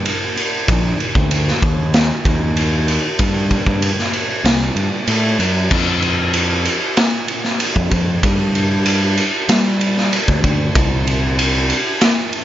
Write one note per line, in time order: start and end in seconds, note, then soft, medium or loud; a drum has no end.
0.06 ride medium
0.37 ride medium
0.68 0.92 A#1 medium
0.68 kick loud
0.68 ride medium
1.00 ride medium
1.15 1.51 D2 medium
1.15 kick medium
1.31 ride medium
1.48 snare soft
1.62 2.10 D#2 medium
1.62 kick medium
1.62 ride soft
1.94 snare medium
1.94 ride medium
2.25 2.97 D#2 medium
2.25 kick medium
2.25 ride medium
2.57 ride medium
2.88 ride medium
3.19 3.55 G2 medium
3.19 kick loud
3.19 ride medium
3.51 kick medium
3.51 ride medium
3.67 3.91 G2 medium
3.67 kick medium
3.82 ride medium
3.99 snare soft
4.13 ride medium
4.44 4.69 C2 medium
4.44 snare loud
4.44 ride medium
4.76 4.88 G2 medium
4.76 ride medium
5.07 5.36 A2 medium
5.07 ride medium
5.39 5.68 F#2 medium
5.39 ride medium
5.71 6.67 F2 medium
5.71 kick loud
5.71 crash loud
6.02 ride medium
6.33 ride medium
6.65 ride medium
6.97 snare loud
6.97 ride medium
7.28 ride medium
7.44 snare soft
7.60 ride medium
7.76 7.88 F2 medium
7.76 kick medium
7.91 8.16 F2 medium
7.91 kick medium
7.91 ride medium
8.23 9.19 G2 medium
8.23 kick loud
8.23 ride medium
8.55 ride medium
8.86 ride medium
9.17 ride medium
9.49 10.09 G3 medium
9.49 snare medium
9.49 ride medium
9.81 ride medium
9.98 snare soft
10.13 ride medium
10.28 10.40 D2 medium
10.28 kick medium
10.44 10.68 D2 medium
10.44 kick medium
10.44 ride medium
10.75 11.71 C2 medium
10.75 kick loud
10.75 ride medium
11.07 ride medium
11.39 ride medium
11.70 ride medium
12.01 snare medium
12.01 ride medium
12.33 ride medium